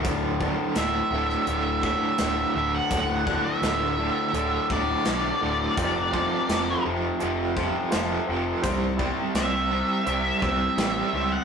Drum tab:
HH |x---x---x---x---|x---x---x---x---|x---x---x---x---|x---x---x---x---|
SD |----o--o----o---|----o-------o---|----o-------o---|----o-------o---|
BD |o-o-------o-----|o-o-------o-----|o-o-------o-----|o-o-------o-----|